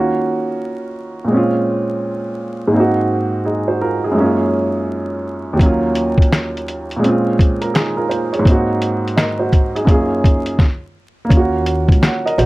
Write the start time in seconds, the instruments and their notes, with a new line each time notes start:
Already playing: upright piano D#3 A#3 C#4 F4 F#4
1.25 upright piano A#2 G#3
1.31 upright piano C4 C#4
1.37 upright piano F4
2.67 upright piano G#2 A#3
2.74 upright piano C4 D#4
2.80 upright piano F#4
3.45 upright piano D#4 G#4
3.68 upright piano F#4 C5
3.81 upright piano F4 A#4
4.04 upright piano D#4 G#4
4.11 upright piano F#2 G#3
4.17 upright piano A#3 C#4
4.24 upright piano F4
5.53 upright piano D#2 F#3
5.59 upright piano A#3 C#4, kick, closed hi-hat
5.66 upright piano F4
5.95 closed hi-hat
6.18 kick
6.22 closed hi-hat
6.32 finger snap, snare, closed hi-hat
6.57 closed hi-hat
6.68 closed hi-hat
6.91 closed hi-hat
6.96 upright piano A#2 G#3
7.03 upright piano C4 C#4, closed hi-hat
7.09 upright piano F4
7.39 kick, closed hi-hat
7.61 upright piano F4 A#4, closed hi-hat
7.74 upright piano D#4 G#4, finger snap, snare, closed hi-hat
7.97 upright piano F4 A#4
8.09 upright piano F4 C5, closed hi-hat
8.33 upright piano G#4 C#5, closed hi-hat
8.39 upright piano G#2 A#3
8.45 upright piano C4 D#4, kick, closed hi-hat
8.52 upright piano F#4
8.82 closed hi-hat
9.08 closed hi-hat
9.16 upright piano A#4 D#5, finger snap, snare, closed hi-hat
9.39 upright piano F#4 C5
9.53 kick, closed hi-hat
9.75 upright piano D#4 G#4, closed hi-hat
9.85 upright piano F#2 A#3 C#4, kick, closed hi-hat
9.89 upright piano F4 G#4
10.24 kick, closed hi-hat
10.46 closed hi-hat
10.59 kick, snare
11.25 upright piano A#3
11.29 upright bass D#2, upright piano C#4, kick, closed hi-hat
11.33 upright piano F4 F#4
11.66 closed hi-hat
11.88 upright bass C#2, kick, closed hi-hat
12.02 upright piano C#5 F#5, finger snap, snare, closed hi-hat
12.26 upright piano A#4 D#5, closed hi-hat
12.38 upright bass A#1, upright piano F#4 C5, closed hi-hat